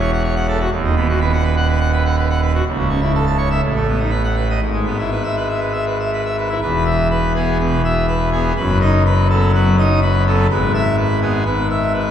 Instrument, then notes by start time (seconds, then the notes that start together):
pipe organ
Already playing: E1 E2
0.00 C#5
0.12 F#5
0.24 C#5
0.36 F#5
0.48 A4
0.60 F#4
0.71 D#1 D#2
0.84 D#3
0.96 B3
1.09 F#4
1.21 B4
1.33 F#5
1.44 B4
1.56 F#5
1.69 B4
1.80 F#5
1.93 B4
2.05 F#5
2.18 B4
2.30 F#5
2.42 B4
2.54 F#4
2.66 C#1 C#2
2.77 C#3
2.89 C#4
3.01 E4
3.14 A4
3.27 A5
3.37 C#5
3.50 E5
3.63 A1 A2
3.76 A3
3.88 B3
3.99 D#4
4.10 B4
4.24 F#5
4.36 B4
4.50 D#5
4.60 G#1 G#2
4.73 G#3
4.85 B3
4.98 E4
5.11 B4
5.24 E5
5.36 B4
5.48 E5
5.60 B4
5.73 E5
5.86 B4
6.00 E5
6.13 B4
6.25 E5
6.37 B4
6.49 E4
6.61 E1 E2 B4
6.85 E5
7.10 B4
7.35 B3 G#4
7.60 B2 B4
7.84 E5
8.08 B4
8.32 B3 G#4
8.56 F#1 F#2 B4
8.80 D#4 D#5
9.06 B4
9.30 B3 A4
9.54 F#3 B4
9.78 D#4 D#5
10.02 B4
10.26 B3 A4
10.50 G#1 G#2 B4
10.74 E5
10.97 B4
11.22 B3 G#4
11.45 G#1 G#2 B4
11.70 E5
11.93 B4